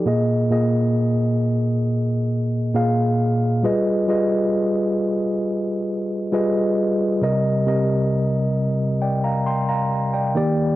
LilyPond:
\new Staff \with { instrumentName = "Tine electric piano" } { \time 4/4 \key c \minor \tempo 4 = 67 << { r1 | r1 | r2 <d'' g''>16 <f'' bes''>16 <g'' c'''>16 <f'' bes''>8 <d'' g''>8 r16 | } \\ { <bes, bes aes' ees''>8 <bes, bes aes' ees''>4. r4 <bes, bes aes' f''>8 r8 | <g f' aes' b' ees''>8 <g f' aes' b' ees''>4. r4 <g f' aes' b' ees''>8 r8 | <c g bes' ees''>8 <c g bes' ees''>4. r4. <ees bes g' d''>8 | } >> }